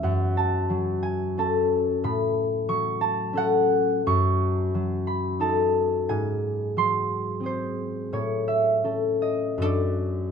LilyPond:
\new Staff \with { instrumentName = "Harp" } { \time 3/4 \key fis \dorian \tempo 4 = 89 << { fis''8 a''4 gis''8 a''4 | b''4 cis'''8 a''8 fis''4 | cis'''4. b''8 a''4 | gis''4 bis''4 bis'4 |
cis''8 e''4 dis''8 d''4 | } \\ { <fis, cis'>4 fis4 <cis' a'>4 | a,4 fis4 <cis' a'>4 | fis,4 fis4 <dis' a'>4 | gis,4 fis4 <bis gis'>4 |
a,4 <cis' a'>4 <fis, fis d' a'>4 | } >> }